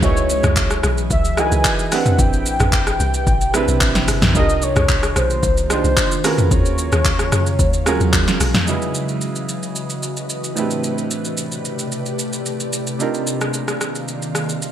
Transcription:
Already playing: ambient pad G#4
0.02 log drum bass C#2, ambient pad E3 B4 D#5, grand piano D#4 E4 F#4 G#4 B4, soft synth lead C#5, kick, shaker
0.17 shaker
0.30 soft synth lead C#5, shaker
0.43 log drum bass C#2, cross-stick, mid tom, shaker
0.56 kick, clap, shaker
0.71 cross-stick, shaker
0.83 log drum bass B1, cross-stick, shaker
0.98 shaker
1.11 log drum bass C#2, soft synth lead E5, kick, shaker
1.25 shaker
1.37 grand piano D#4 E4 F#4 G#4 A#4, soft synth lead G#5, cross-stick, shaker
1.46 grand piano B4
1.52 log drum bass C#2, shaker
1.65 kick, clap, shaker
1.79 shaker
1.92 ambient pad C3 G4, grand piano C4 D4 E4 G4 B4, soft synth lead F#5, cross-stick, open hi-hat, shaker
2.06 mid tom, shaker
2.19 log drum bass A1, soft synth lead G5, kick, shaker
2.33 shaker
2.46 shaker
2.60 log drum bass A1, cross-stick, mid tom, shaker
2.72 soft synth lead G5, kick, clap, shaker
2.87 cross-stick, shaker
3.00 log drum bass C2, shaker
3.14 shaker
3.27 log drum bass A1, kick, shaker
3.41 shaker
3.54 grand piano C4 D4 E4 G4 B4, cross-stick, shaker
3.68 log drum bass B1, shaker
3.81 log drum bass A1, kick, clap, shaker
3.95 snare, shaker
4.08 log drum bass G1, cross-stick, open hi-hat, shaker
4.22 log drum bass A1, snare, mid tom, shaker
4.35 log drum bass C2, ambient pad D#3 A#3 F4, grand piano D4 D#4 F4 G4 A#4, soft synth lead D#5, kick, shaker
4.49 shaker
4.62 soft synth lead C#5, shaker
4.76 log drum bass C2, cross-stick, mid tom, shaker
4.89 kick, clap, shaker
5.03 cross-stick, shaker
5.16 log drum bass B1, soft synth lead C5, cross-stick, shaker
5.30 shaker
5.43 log drum bass C2, kick, shaker
5.57 shaker
5.70 grand piano D4 D#4 F4 G4 C5, soft synth lead C5, cross-stick, shaker
5.84 log drum bass C2, shaker
5.97 kick, clap, shaker
6.12 shaker
6.24 ambient pad C#3 F#3 G#3 F5, grand piano C#4 F4 F#4 G#4 A#4, soft synth lead B4, cross-stick, open hi-hat, shaker
6.38 mid tom, shaker
6.51 log drum bass D#2, soft synth lead C#5, kick, shaker
6.66 shaker
6.78 shaker
6.92 log drum bass D#2, cross-stick, shaker
7.05 kick, clap, shaker
7.19 cross-stick, shaker
7.32 log drum bass F#2, cross-stick, shaker
7.46 shaker
7.59 log drum bass D#2, kick, shaker
7.73 shaker
7.86 grand piano C#4 F4 F#4 G#4 A#4, cross-stick, shaker
8.00 log drum bass E2, shaker
8.13 log drum bass D#2, kick, clap, shaker
8.28 snare, shaker
8.40 log drum bass B1, cross-stick, open hi-hat, shaker
8.54 snare, mid tom, shaker
8.66 grand piano C#3 D#4 E4 F#4 G#4 B4, ambient pad C#3 E3 F#4 B4 D#5, shaker
8.82 shaker
8.95 shaker
9.09 shaker
9.21 shaker
9.36 shaker
9.49 shaker
9.63 shaker
9.76 shaker
9.90 shaker
10.03 shaker
10.17 shaker
10.30 shaker
10.44 shaker
10.55 grand piano A2 C4 D4 E4 G4 B4, ambient pad C3 A3 G4 D5, shaker
10.71 shaker
10.84 shaker
10.98 shaker
11.11 shaker
11.25 shaker
11.37 shaker
11.52 shaker
11.65 shaker
11.79 shaker
11.92 shaker
12.06 shaker
12.19 shaker
12.33 shaker
12.46 shaker
12.60 shaker
12.73 shaker
12.87 shaker
12.99 grand piano C3 D4 D#4 F4 G4 A#4, ambient pad D#3 A#3 C4 F5, shaker
13.14 shaker
13.27 shaker
13.41 cross-stick, shaker
13.54 shaker
13.68 cross-stick, shaker
13.81 cross-stick, shaker
13.95 shaker
14.08 shaker
14.22 shaker
14.35 cross-stick, shaker
14.49 shaker
14.62 shaker

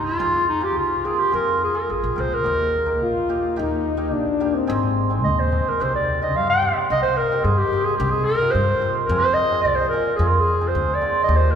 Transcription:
0.05 clarinet F4
0.19 upright bass F2, hammered dulcimer C4 F4 G#4
0.49 clarinet D#4
0.61 hammered dulcimer C4 F4 G#4, clarinet G4
0.77 upright bass C2, clarinet F4
1.05 hammered dulcimer C4 F4 A#4, clarinet G#4
1.20 clarinet G4
1.31 upright bass F2, hammered dulcimer C4 F4 G#4, clarinet A#4
1.64 clarinet G#4
1.74 hammered dulcimer C4 F4 G#4, clarinet A#4
1.89 upright bass G#1, clarinet G#4
2.04 upright bass A#1
2.15 upright bass C2, hammered dulcimer C4 F4 A#4
2.20 clarinet C5
2.32 upright bass D2, clarinet A#4
2.44 upright bass D#2, hammered dulcimer A#3 D#4 G4
2.86 hammered dulcimer A#3 D#4 A#4
3.03 upright bass A#1, trombone F4
3.29 hammered dulcimer A#3 D#4 G4
3.56 upright bass D#2, hammered dulcimer A#3 D#4 G4, trombone D#4
3.97 hammered dulcimer A#3 D#4 G4
4.14 upright bass A#1, trombone D4
4.40 hammered dulcimer A#3 D#4 G4
4.55 trombone C4
4.67 upright bass G#1, hammered dulcimer C4 D#4 G#4
5.10 hammered dulcimer C4 D#4 G#4
5.24 upright bass D#2, clarinet D#5
5.39 clarinet C5
5.52 hammered dulcimer C4 D#4 G#4
5.69 clarinet A#4
5.80 upright bass C2, hammered dulcimer C4 D#4 G4, clarinet C5
5.95 clarinet D5
6.22 hammered dulcimer C4 D#4 G4, clarinet D#5
6.36 upright bass G2, clarinet F5
6.50 clarinet G5
6.62 hammered dulcimer C4 D#4 G4
6.90 upright bass C2, hammered dulcimer C4 D#4 G4, clarinet D#5
7.02 clarinet C5
7.17 clarinet A#4
7.32 hammered dulcimer C4 D#4 G4
7.44 upright bass G2, clarinet G#4
7.58 clarinet G4
7.73 hammered dulcimer C4 D#4 G4
7.85 clarinet G#4
7.98 upright bass C2, hammered dulcimer C4 D#4 G4, clarinet G4
8.10 clarinet G#4
8.25 clarinet A#4
8.41 hammered dulcimer C4 D#4 F4
8.51 upright bass G2, clarinet C5
8.81 hammered dulcimer C4 D#4 G4
9.06 upright bass F2, clarinet A#4
9.11 hammered dulcimer C4 F4 G#4
9.19 clarinet C5
9.34 clarinet D#5
9.51 hammered dulcimer C4 F4 G#4
9.61 upright bass C2, clarinet D5
9.75 clarinet C5
9.89 hammered dulcimer C4, clarinet A#4
9.93 hammered dulcimer F4 G#4
10.16 upright bass F2, hammered dulcimer C4, clarinet G#4
10.20 hammered dulcimer F4 G#4
10.27 clarinet A#4
10.40 clarinet G#4
10.61 hammered dulcimer C4 F4 G#4
10.68 clarinet C5
10.75 upright bass D2
10.94 clarinet D5
11.01 hammered dulcimer C4 F4 G#4
11.24 clarinet D#5
11.28 upright bass D#2, hammered dulcimer A#3 D#4 G4
11.36 clarinet C5
11.51 clarinet A#4

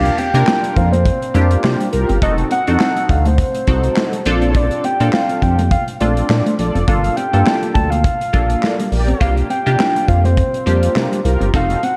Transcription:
Already playing: analog synth bass C2, analog polysynth A#3 D4 F4 G4, soft synth lead F5
0.05 muted clean electric guitar stroke, closed hi-hat
0.18 clean electric guitar C4, soft synth lead G5, closed hi-hat
0.34 analog synth bass C3, analog polysynth A#3 D4 F4 A#4, clean electric guitar D4, closed hi-hat
0.47 clean electric guitar C4, snare, clap
0.64 muted clean electric guitar stroke, closed hi-hat
0.76 analog synth bass F2, soft synth lead F5, kick, closed hi-hat
0.92 clean electric guitar A#3, soft synth lead C5, closed hi-hat
1.06 kick, closed hi-hat
1.22 closed hi-hat
1.34 analog synth bass F2, clean electric guitar G3, analog polysynth A#3 D4 E4 G4, closed hi-hat
1.41 analog polysynth F4
1.51 closed hi-hat
1.63 analog synth bass C3, analog polysynth F4 G4 A#4, snare, clap
1.80 clean electric guitar G3, closed hi-hat
1.92 analog synth bass C2, analog polysynth F4 G4 A#4, muted clean electric guitar stroke, closed hi-hat
2.09 analog synth bass G1, clean electric guitar C4, closed hi-hat
2.22 analog synth bass F1, analog polysynth C4 D#4 F#4 A4, soft synth lead D#5, kick, closed hi-hat
2.38 muted clean electric guitar stroke, closed hi-hat
2.51 clean electric guitar C4, soft synth lead F#5, closed hi-hat
2.67 analog synth bass F2, analog polysynth C4 D#4 F#4 A4, clean electric guitar D4, closed hi-hat
2.80 clean electric guitar C4, snare, clap
2.96 muted clean electric guitar stroke, closed hi-hat
3.09 analog synth bass D2, soft synth lead F5, kick, closed hi-hat
3.25 clean electric guitar A3, soft synth lead C5, closed hi-hat
3.38 kick, closed hi-hat
3.55 closed hi-hat
3.67 analog synth bass C2, clean electric guitar G3, analog polysynth C4 D#4 F#4 A4, kick, closed hi-hat
3.83 closed hi-hat
3.96 analog polysynth F#4 A4 C5, snare, clap
4.13 clean electric guitar G3, closed hi-hat
4.25 analog synth bass A#1, analog polysynth C4 D4 F4 A4 D5, muted clean electric guitar stroke, closed hi-hat
4.42 clean electric guitar C4, closed hi-hat
4.55 soft synth lead D5, kick, closed hi-hat
4.71 muted clean electric guitar stroke, closed hi-hat
4.84 clean electric guitar C4, soft synth lead G5, closed hi-hat
5.00 analog synth bass A#2, analog polysynth C4 D4 F4 A4, clean electric guitar D4, closed hi-hat
5.13 clean electric guitar C4, soft synth lead F5, snare, clap
5.29 muted clean electric guitar stroke, closed hi-hat
5.42 analog synth bass F2, soft synth lead G5, kick, closed hi-hat
5.59 clean electric guitar A#3, closed hi-hat
5.71 soft synth lead F5, kick, closed hi-hat
5.88 closed hi-hat
6.00 analog synth bass A#1, clean electric guitar A3, analog polysynth C4 D4 F4 A4, soft synth lead D5, closed hi-hat
6.17 closed hi-hat
6.29 analog synth bass A#2, analog polysynth F4 A4 D5, snare, clap
6.46 clean electric guitar A3, closed hi-hat
6.58 analog synth bass A#1, analog polysynth F4 A4 D5, muted clean electric guitar stroke, closed hi-hat
6.75 analog synth bass F1, clean electric guitar C4, closed hi-hat
6.88 analog synth bass G1, analog polysynth A#3 D4 F4 A4, soft synth lead F5, kick, closed hi-hat
7.04 muted clean electric guitar stroke, closed hi-hat
7.16 clean electric guitar C4, soft synth lead G5, closed hi-hat
7.33 analog synth bass G2, analog polysynth A#3 D4 F4 A4, clean electric guitar D4, closed hi-hat
7.46 clean electric guitar C4, snare, clap
7.62 muted clean electric guitar stroke, closed hi-hat
7.74 analog synth bass D2, soft synth lead A5, kick, closed hi-hat
7.90 clean electric guitar A#3, soft synth lead F5, closed hi-hat
8.04 kick, closed hi-hat
8.21 closed hi-hat
8.33 analog synth bass A#1, clean electric guitar G3, analog polysynth A#3 D4 F4 A4, kick, closed hi-hat
8.50 closed hi-hat
8.62 analog polysynth D4 A#4 D5, snare, clap
8.79 clean electric guitar G3, closed hi-hat
8.91 analog synth bass A#1, analog polysynth G4 A#4 D5, muted clean electric guitar stroke, open hi-hat
9.08 clean electric guitar C4, closed hi-hat
9.20 analog synth bass C2, analog polysynth A#3 D4 F4 G4, soft synth lead F5, kick, closed hi-hat
9.37 muted clean electric guitar stroke, closed hi-hat
9.50 clean electric guitar C4, soft synth lead G5, closed hi-hat
9.66 analog synth bass C3, analog polysynth A#3 D4 F4 G4, clean electric guitar D4, closed hi-hat
9.79 clean electric guitar C4, snare, clap
9.95 muted clean electric guitar stroke, closed hi-hat
10.08 analog synth bass F2, soft synth lead F5, kick, closed hi-hat
10.24 clean electric guitar A#3, soft synth lead C5, closed hi-hat
10.37 kick, closed hi-hat
10.54 closed hi-hat
10.66 analog synth bass F2, clean electric guitar G3, analog polysynth A#3 D4 F4 G4, closed hi-hat
10.83 closed hi-hat
10.95 analog synth bass C3, analog polysynth F4 G4 A#4, snare, clap
11.12 clean electric guitar G3, closed hi-hat
11.24 analog synth bass C2, analog polysynth F4 G4 A#4, muted clean electric guitar stroke, closed hi-hat
11.40 analog synth bass G1, clean electric guitar C4, closed hi-hat
11.54 analog synth bass F1, analog polysynth C4 D#4 F#4 A4, soft synth lead F5, kick, closed hi-hat
11.70 muted clean electric guitar stroke, closed hi-hat
11.83 clean electric guitar C4, soft synth lead F#5, closed hi-hat

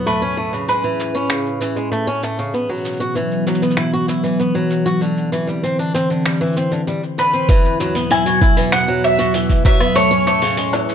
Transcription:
0.06 ambient pad A2 C#4 G#4, steel-string acoustic guitar A3, mandolin B4, shaker
0.22 steel-string acoustic guitar C#4, shaker
0.37 steel-string acoustic guitar A3
0.53 steel-string acoustic guitar C#3, shaker
0.68 steel-string acoustic guitar G#3, mandolin B4, shaker
0.84 steel-string acoustic guitar E3, shaker
1.00 shaker
1.15 steel-string acoustic guitar C#4, shaker
1.30 steel-string acoustic guitar C#3, finger snap, shaker
1.46 shaker
1.61 steel-string acoustic guitar E3, shaker
1.76 steel-string acoustic guitar G#3, shaker
1.92 steel-string acoustic guitar A3, shaker
2.07 steel-string acoustic guitar C#4, shaker
2.23 steel-string acoustic guitar A3, shaker
2.39 steel-string acoustic guitar C#3, shaker
2.53 ambient pad B2 E3 F#3 B3, steel-string acoustic guitar B3, shaker
2.69 steel-string acoustic guitar F#3, shaker
2.73 shaker
2.77 shaker
2.81 shaker
2.85 shaker
2.89 shaker
2.92 shaker
2.96 steel-string acoustic guitar F#4, shaker
3.00 shaker
3.15 steel-string acoustic guitar E3, shaker
3.31 shaker
3.47 steel-string acoustic guitar F#3, shaker
3.54 shaker
3.62 steel-string acoustic guitar B3, shaker
3.70 shaker
3.77 steel-string acoustic guitar E4, finger snap, shaker
3.93 steel-string acoustic guitar F#4, shaker
4.08 steel-string acoustic guitar E4, shaker
4.24 steel-string acoustic guitar E3, shaker
4.40 steel-string acoustic guitar B3, shaker
4.55 steel-string acoustic guitar F#3, shaker
4.70 shaker
4.86 steel-string acoustic guitar F#4, shaker
5.01 steel-string acoustic guitar D3, ambient pad D3 C4, shaker
5.17 shaker
5.32 steel-string acoustic guitar E3, shaker
5.47 steel-string acoustic guitar G3, shaker
5.63 steel-string acoustic guitar C4, shaker
5.79 steel-string acoustic guitar D4, shaker
5.94 steel-string acoustic guitar C4, shaker
6.10 steel-string acoustic guitar D3, shaker
6.25 steel-string acoustic guitar G3, finger snap, shaker
6.31 shaker
6.36 shaker
6.41 steel-string acoustic guitar E3, shaker
6.47 shaker
6.52 shaker
6.57 steel-string acoustic guitar C4, shaker
6.72 steel-string acoustic guitar D3, shaker
6.87 steel-string acoustic guitar G3, shaker
7.03 shaker
7.18 steel-string acoustic guitar D3, mandolin B4, shaker
7.33 steel-string acoustic guitar C4, shaker
7.49 ambient pad E2 B2 F#3, steel-string acoustic guitar E3, kick, open hi-hat, shaker
7.65 shaker
7.80 steel-string acoustic guitar F#3, shaker
7.95 steel-string acoustic guitar B3, open hi-hat, shaker
8.11 steel-string acoustic guitar E4, mandolin G#5, open hi-hat, shaker
8.26 steel-string acoustic guitar F#4, open hi-hat, shaker
8.41 steel-string acoustic guitar E4, kick, shaker
8.57 steel-string acoustic guitar E3, open hi-hat, shaker
8.72 steel-string acoustic guitar B3, mandolin F#5, finger snap, open hi-hat, shaker
8.88 steel-string acoustic guitar F#3
9.04 mandolin E5
9.19 steel-string acoustic guitar F#4, open hi-hat, shaker
9.34 steel-string acoustic guitar E3, open hi-hat, shaker
9.50 kick, open hi-hat, shaker
9.65 steel-string acoustic guitar F#3, mandolin E5, kick, shaker
9.80 steel-string acoustic guitar B3, open hi-hat, low woodblock, shaker
9.95 ambient pad A2 C#4 G#4, steel-string acoustic guitar A3, mandolin C#5, open hi-hat, shaker
10.11 steel-string acoustic guitar C#4, shaker
10.27 steel-string acoustic guitar A3, mandolin C#5, shaker
10.42 steel-string acoustic guitar C#3, open hi-hat, shaker
10.45 open hi-hat
10.47 open hi-hat
10.50 open hi-hat
10.52 open hi-hat
10.55 open hi-hat
10.57 steel-string acoustic guitar G#3, open hi-hat, shaker
10.73 steel-string acoustic guitar E3, open hi-hat, low woodblock, shaker
10.89 shaker

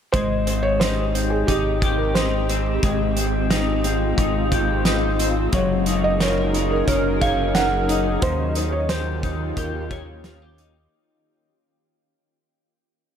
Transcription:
0.12 analog synth bass G#1, clean electric guitar G#3, ambient pad G#3 C4 G4, felt piano C5, kick, closed hi-hat
0.47 clean electric guitar C4, closed hi-hat
0.63 felt piano C#5
0.80 clean electric guitar D#4, felt piano C5, snare, closed hi-hat
1.15 clean electric guitar C4, closed hi-hat
1.30 felt piano G#4
1.47 analog synth bass G#1, clean electric guitar D#4, felt piano G4, kick, closed hi-hat
1.82 clean electric guitar G4, kick, closed hi-hat
1.98 felt piano A#4
2.15 clean electric guitar D#4, felt piano C5, snare, closed hi-hat
2.49 clean electric guitar C4, closed hi-hat
2.83 analog synth bass G#1, clean electric guitar G#3, ambient pad F4, kick, closed hi-hat
3.17 clean electric guitar C4, closed hi-hat
3.50 clean electric guitar D#4, snare, closed hi-hat
3.84 clean electric guitar C4, closed hi-hat
4.18 analog synth bass G#1, clean electric guitar D#4, kick, closed hi-hat
4.52 clean electric guitar G4, kick, closed hi-hat
4.85 clean electric guitar D#4, snare, closed hi-hat
5.20 clean electric guitar C4, closed hi-hat
5.52 analog synth bass F#1, ambient pad F#3 C#4 D#4 G#4 A#4, clean electric guitar F#3, felt piano C#5, kick, closed hi-hat
5.86 clean electric guitar D#4, closed hi-hat
6.04 felt piano D#5
6.20 clean electric guitar A#4, felt piano C#5, snare, closed hi-hat
6.54 clean electric guitar D#4, closed hi-hat
6.71 felt piano A#4
6.87 analog synth bass F#1, clean electric guitar A#4, felt piano C#5, kick, closed hi-hat
7.21 clean electric guitar C#5, felt piano F5, kick, closed hi-hat
7.55 clean electric guitar A#4, felt piano F#5, snare, closed hi-hat
7.89 clean electric guitar D#4, closed hi-hat
8.21 analog synth bass D#2, ambient pad D#3 A#3 F4 G4, clean electric guitar D#3, felt piano C5, kick, closed hi-hat
8.55 clean electric guitar D#4, closed hi-hat
8.72 felt piano C#5
8.89 clean electric guitar G4, felt piano C5, snare, closed hi-hat
9.23 clean electric guitar D#4, kick, closed hi-hat
9.57 analog synth bass D#2, clean electric guitar G4, felt piano A#4, kick, closed hi-hat
9.91 clean electric guitar C#5, kick, closed hi-hat
10.24 clean electric guitar F4, snare, closed hi-hat
10.42 clean electric guitar G4
10.58 clean electric guitar D#4, closed hi-hat

